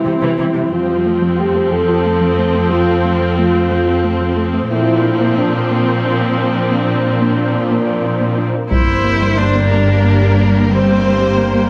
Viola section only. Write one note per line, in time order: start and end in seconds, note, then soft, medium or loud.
0.00 0.70 C4 soft
0.05 0.12 C3 soft
0.21 0.37 E3 soft
0.38 0.44 E3 soft
0.54 0.61 C3 soft
0.71 4.67 F3 soft
0.71 4.67 C4 soft
4.71 8.47 F3 soft
4.71 8.47 C4 medium
8.71 11.70 G3 soft
8.71 11.70 A#3 soft